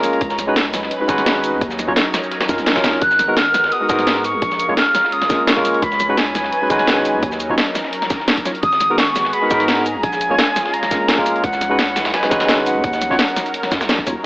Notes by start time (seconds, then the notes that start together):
Already playing: G#3 A#3 C#4 F4 A#4 A#5
0.03 snare, closed hi-hat, open hi-hat, shaker
0.13 closed hi-hat
0.21 C#2 F#3 D#4 B4, kick, closed hi-hat
0.30 snare, shaker
0.39 snare, closed hi-hat, shaker
0.47 G#3 C#4 D#4 F#4 B4
0.56 snare, closed hi-hat
0.65 closed hi-hat
0.74 snare, closed hi-hat, open hi-hat, shaker
0.83 snare
0.91 closed hi-hat
1.00 G#3 C#4 D#4 F#4 B4
1.07 G#1 G#3 C#4 D#4 F#4 B4, kick, snare, closed hi-hat, shaker
1.18 snare
1.26 snare, closed hi-hat
1.36 snare
1.44 closed hi-hat, open hi-hat, shaker
1.53 F#2
1.61 D#2 C#4 A#4, kick, closed hi-hat
1.71 snare, shaker
1.79 snare, closed hi-hat, shaker
1.87 D#2 F#3 C#4 D#4 F4 C#5
1.96 snare, closed hi-hat
2.14 snare, closed hi-hat, open hi-hat, shaker
2.23 shaker
2.31 snare, closed hi-hat
2.41 snare, closed hi-hat
2.48 F#2 F#3 C#4 D#4 F4 A#4, kick, snare, closed hi-hat, shaker
2.58 A#1, snare, closed hi-hat, shaker
2.66 snare, closed hi-hat
2.75 F#3 C#4 D#4 F4 A#4, kick, snare, closed hi-hat
2.84 D#2, snare, closed hi-hat, open hi-hat, shaker
2.93 snare
3.02 G#1 G#3 B3 F#4 F#6, kick, closed hi-hat
3.11 snare, shaker
3.19 snare, closed hi-hat, shaker
3.28 G#3 B3 D#4 F#4 A#4
3.37 F6, snare, closed hi-hat
3.46 closed hi-hat
3.54 snare, closed hi-hat, open hi-hat, shaker
3.64 snare
3.72 D#6, closed hi-hat
3.81 G#3 B3 D#4 F#4 A#4
3.89 G#2 G#3 B3 D#4 F#4 A#4, kick, snare, closed hi-hat, shaker
3.99 snare
4.07 snare, closed hi-hat
4.16 snare
4.24 C#4 F4 C#6, closed hi-hat, open hi-hat, shaker
4.34 A#1
4.42 A#1, kick, closed hi-hat
4.51 snare, shaker
4.60 closed hi-hat, shaker
4.68 A#1 G#3 A#3 C#4 F4 C#5
4.77 F6, snare, closed hi-hat
4.95 snare, closed hi-hat, open hi-hat, shaker
5.04 snare
5.12 D#6, closed hi-hat
5.22 snare
5.29 G#3 A#3 C#4 F4 A#4, kick, snare, closed hi-hat, shaker
5.47 C#6, snare, closed hi-hat
5.56 G#3 A#3 C#4 F4 A#4, kick, snare
5.65 snare, closed hi-hat, open hi-hat, shaker
5.74 closed hi-hat
5.82 C#2 F#3 D#4 B4 B5, kick, closed hi-hat
5.92 snare, shaker
6.00 snare, closed hi-hat, shaker
6.09 G#3 C#4 D#4 F#4 B4
6.17 G#5, snare, closed hi-hat
6.27 closed hi-hat
6.35 snare, closed hi-hat, open hi-hat, shaker
6.44 snare
6.52 closed hi-hat
6.62 G#3 C#4 D#4 F#4 B4
6.69 G#1 G#3 C#4 D#4 F#4 B4, kick, snare, closed hi-hat, shaker
6.79 snare
6.87 snare, closed hi-hat
6.97 snare
7.05 closed hi-hat, open hi-hat, shaker
7.14 F#2
7.22 D#2 A#4, kick, closed hi-hat
7.32 snare, shaker
7.40 closed hi-hat, shaker
7.49 D#2 F#3 C#4 D#4 F4 C#5
7.58 snare, closed hi-hat
7.75 snare, closed hi-hat, open hi-hat, shaker
7.84 snare
7.93 closed hi-hat
8.02 snare
8.10 kick, snare, closed hi-hat, shaker
8.20 snare
8.28 snare, closed hi-hat
8.37 kick, closed hi-hat
8.45 F#3 C#4 D#4 F4 C#5, snare, open hi-hat, shaker
8.55 closed hi-hat
8.63 G#1 G#3 B3 F#4 G#4 D#6, kick, closed hi-hat
8.72 snare, shaker
8.80 snare, closed hi-hat, shaker
8.90 G#3 B3 D#4 F#4 A#4
8.98 C#6, snare, closed hi-hat
9.07 closed hi-hat
9.16 snare, closed hi-hat, open hi-hat, shaker
9.25 snare
9.33 B5, closed hi-hat
9.42 G#3 B3 D#4 F#4 A#4
9.50 G#2 G#3 B3 D#4 F#4 A#4, kick, snare, closed hi-hat, shaker
9.60 snare
9.68 A#5, snare, closed hi-hat
9.78 snare
9.86 C#4 F4, closed hi-hat, open hi-hat, shaker
9.95 A#1
10.03 A#1 G#5, kick, closed hi-hat
10.13 snare, shaker
10.21 closed hi-hat, shaker
10.30 A#1 G#3 A#3 C#4 F4 C#5
10.38 snare, closed hi-hat
10.56 snare, closed hi-hat, open hi-hat, shaker
10.65 snare
10.74 A#5, closed hi-hat
10.83 snare
10.91 G#3 A#3 C#4 F4 A#4, kick, snare, closed hi-hat, shaker
11.08 snare, closed hi-hat
11.17 G#3 A#3 C#4 F4 A#4, kick, snare
11.26 snare, closed hi-hat, open hi-hat, shaker
11.36 closed hi-hat
11.44 C#2 F#3 D#4 B4 F#5, kick, closed hi-hat
11.53 snare, shaker
11.61 snare, closed hi-hat, shaker
11.70 G#3 C#4 D#4 F#4 B4
11.79 snare, closed hi-hat
11.88 closed hi-hat
11.96 snare, closed hi-hat, open hi-hat, shaker
12.05 snare, closed hi-hat
12.14 G#5, snare, closed hi-hat
12.23 G#3 C#4 D#4 F#4 B4, snare, closed hi-hat
12.30 G#1 G#3 C#4 D#4 F#4 B4, kick, snare, closed hi-hat, shaker
12.40 snare, closed hi-hat
12.48 snare, closed hi-hat
12.58 snare
12.66 F#5, closed hi-hat, open hi-hat, shaker
12.76 F#2
12.84 D#2 A#4, kick, closed hi-hat
12.93 snare, shaker
13.02 snare, closed hi-hat, shaker
13.10 D#2 F#3 C#4 D#4 F4 C#5, snare
13.19 snare, closed hi-hat
13.28 closed hi-hat
13.36 snare, open hi-hat, shaker
13.46 closed hi-hat, shaker
13.54 closed hi-hat
13.63 snare
13.72 F#2, kick, snare, closed hi-hat, shaker
13.81 A#1, snare, closed hi-hat, shaker
13.89 snare, closed hi-hat
13.98 kick, snare
14.06 D#2 F#3 C#4 D#4 F4 C#5, snare, closed hi-hat, open hi-hat, shaker